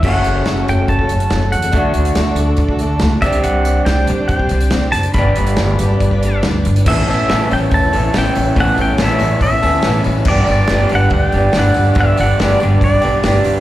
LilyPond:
<<
  \new Staff \with { instrumentName = "Pedal steel guitar" } { \time 4/4 \key a \mixolydian \tempo 4 = 141 fis''4. g''8 a''4. fis''8~ | fis''8 r2. e''8 | fis''4 g''4 g''4. a''8 | b''2. r4 |
e''8 e''4 g''8 a''4 g''4 | fis''8 g''8 e''4 e''4. r8 | d''8 d''4 fis''8 g''4 fis''4 | e''8 fis''8 d''4 d''4. r8 | }
  \new Staff \with { instrumentName = "String section" } { \time 4/4 \key a \mixolydian <cis' fis' a' cis''>1 | <d' fis' a' d''>2.~ <d' fis' a' d''>8 <d' g' c'' d''>8~ | <d' g' c'' d''>1 | <d' g' b' d''>1 |
<e' a' b' cis''>1~ | <e' a' b' cis''>1 | <d' g' b' d''>1~ | <d' g' b' d''>1 | }
  \new Staff \with { instrumentName = "Steel-string acoustic guitar" } { \time 4/4 \key a \mixolydian <fis a cis' fis' a'>8 <a cis' fis' a'>8 <fis a cis' fis' a'>8 <a cis' fis' a'>16 <cis' fis' a'>8 <cis' fis' a'>16 <a cis' fis' a'>8 <fis a cis' fis' a'>16 <cis' fis' a'>8 <cis' fis' a'>16 | <d a d' fis' a'>8 <a d' fis' a'>8 <d a d' fis' a'>8 <a d' fis' a'>16 <d' fis' a'>8 <d' fis' a'>16 <a d' fis' a'>8 <d a d' fis' a'>16 <d' fis' a'>16 <c' d' g' c''>8~ | <c' d' g' c''>8 <c' d' g' c''>8 <c' d' g' c''>8 <c' d' g' c''>16 <d' g' c''>8 <d' g' c''>16 <c' d' g' c''>8 <c' d' g' c''>16 <d' g' c''>8 <d' g' c''>16 | <g d' g' b'>8 <g d' g' b'>8 <g d' g' b'>8 <g d' g' b'>16 <d' g' b'>8 <d' g' b'>16 <g d' g' b'>8 <g d' g' b'>16 <d' g' b'>8 <d' g' b'>16 |
<a, e b cis' e' b'>8 <b cis' e' b'>8 <a, e b cis' e' b'>16 <b cis' e' b'>16 <b cis' e' b'>8. <b cis' e' b'>16 <b cis' e' b'>16 <b cis' e' b'>16 <a, e b cis' e' b'>8 <b cis' e' b'>16 <b cis' e' b'>16 | <a, e b cis' e' b'>8 <b cis' e' b'>8 <a, e b cis' e' b'>16 <b cis' e' b'>16 <b cis' e' b'>8. <b cis' e' b'>16 <b cis' e' b'>16 <b cis' e' b'>16 <a, e b cis' e' b'>8 <b cis' e' b'>16 <b cis' e' b'>16 | <g d' g' b'>8 <g d' g' b'>8 <g d' g' b'>16 <d' g' b'>16 <g d' g' b'>8. <d' g' b'>16 <g d' g' b'>8 <g d' g' b'>8 <g d' g' b'>16 <d' g' b'>16 | <g d' g' b'>8 <g d' g' b'>8 <g d' g' b'>8 <g d' g' b'>8. <d' g' b'>16 <g d' g' b'>8 <g d' g' b'>8 <g d' g' b'>16 <d' g' b'>16 | }
  \new Staff \with { instrumentName = "Clean electric guitar" } { \time 4/4 \key a \mixolydian <fis, cis fis a cis' fis'>1 | <d a d' fis'>2.~ <d a d' fis'>8 <c g c' d' g'>8~ | <c g c' d' g'>2.~ <c g c' d' g'>8 r8 | <g, d g b d' g'>1 |
<a, e b cis' a'>8 <b cis' a'>8 <a, e b cis' a'>8 <b cis' a'>4 <b cis' a'>8 <e b cis' a'>4 | <a, e b cis' a'>8 <b cis' a'>8 <a, e b cis' a'>8 <b cis' a'>4 <b cis' a'>8 <e b cis' a'>4 | <g, d g b d' g'>8 <g b d' g'>8 <g, d g b d' g'>8 <g b d' g'>4 <g b d' g'>8 <g b d' g'>4 | <g, d g b d' g'>8 <g b d' g'>8 <g, d g b d' g'>8 <g b d' g'>4 <g b d' g'>8 <g b d' g'>4 | }
  \new Staff \with { instrumentName = "Upright bass" } { \clef bass \time 4/4 \key a \mixolydian fis,,4 fis,,8 fis,,8 fis,,8 fis,,8 fis,,8 e,8 | d,8 d,8 d,8 d,8 d,4 cis,8 c,8 | c,4 c,8 c,8 c,8 c,8 c,8 fis,,8 | g,,8 g,,8 g,,8 g,,8 g,,4 d,8 g,,8 |
a,,8 a,,8 a,,8 a,,8 e,,8 a,,8 a,,8 a,,8 | a,,8 a,,8 a,,8 a,,8 a,,8 d,8 a,,8 a,,8 | g,,8 g,,8 g,,8 g,,8 d,8 g,,8 g,,8 g,,8 | g,,8 g,,8 g,,8 g,,8 g,,8 b,,8 g,,8 d,8 | }
  \new DrumStaff \with { instrumentName = "Drums" } \drummode { \time 4/4 <cymc bd>8 hh8 <hh sn>8 hh8 <hh bd>16 bd16 hh16 hh16 <hh sn>8 hh16 hh16 | <hh bd>8 hh16 hh16 <hh sn>8 hh8 <hh bd>16 bd16 hh8 <hh sn>8 <hh bd sn>16 hh16 | hh8 hh8 <hh sn>8 hh8 <hh bd>16 bd16 hh16 hh16 <hh sn>8 <hh sn>16 hh16 | <hh bd>8 hh16 hh16 <hh sn>8 hh8 <hh bd>16 bd16 hh8 <hh sn>8 hh16 hh16 |
<cymc bd>8 hho8 <hho sn>8 hho8 <hho bd>8 hho8 <hho sn>8 hho8 | <hho bd>8 hho8 <hho sn>8 hho8 <hho bd>8 hho8 <hho sn>8 hho8 | <cymc bd>8 hho8 <hho sn>8 hho8 <hho bd>8 hho8 <hho sn>8 hho8 | <hho bd>8 hho8 <hho sn>8 hho8 <hho bd>8 hho8 <hho sn>8 hho8 | }
>>